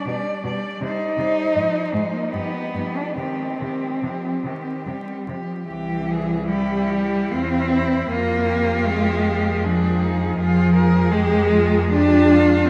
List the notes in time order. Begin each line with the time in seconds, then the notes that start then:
Already playing: D4
0.06 B2 G3 D5
0.44 B2 G3 D5
0.80 C3 G3 D#4 C5
1.17 C3 G3 C5
1.54 G#2 F3 C5
1.93 G#2 F3 G#3 C5
2.14 A#3
2.32 G2 F3 B3 G4
2.73 G2 F3 G4
2.97 D4
3.15 C3 D#3 C4 G4
3.58 C3 D#3 G4
4.02 C3 F3 G4
4.44 C3 D#3 G4
4.85 C3 G3 G4
5.27 C3 F3 G4
5.68 C2 E3 G4
6.11 G#4
6.47 G3 E4 G4
6.90 E4 G4
7.31 E2 C4 F4
7.72 E4
8.10 F2 A#3 F4
8.49 G4
8.87 G#3
9.64 F3 D4 G#4
10.03 D#4
10.38 F2 F3 F4 G#4
10.75 A#4
11.11 G#3 G4 G#4
11.50 F4
11.90 D4 F4 G4
12.34 F4